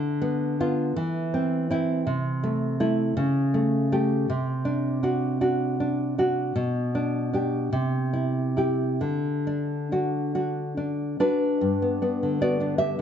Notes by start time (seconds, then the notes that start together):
Already playing: D3
0.22 B3
0.60 B3 F4
0.96 E3
1.34 C4
1.70 C4 E4
2.07 C3
2.44 A3
2.80 A3 E4
3.17 C#3
3.54 A3
3.92 A3 G4
4.30 C3
4.65 D4
5.03 D4 F#4
5.41 D4 F#4
5.80 D4
6.18 D4 F#4
6.56 B2
6.95 D4
7.33 D4 G4
7.73 C3
8.13 E4
8.57 E4 G4
9.01 D3
9.47 D4
9.92 D4 F#4
10.35 D4 F#4
10.77 D4
11.20 D4 F#4 B4
11.61 G2
11.82 B3
12.02 B3 D4
12.23 D3
12.41 B3 F#4 D5
12.60 B3 D4
12.78 G4 E5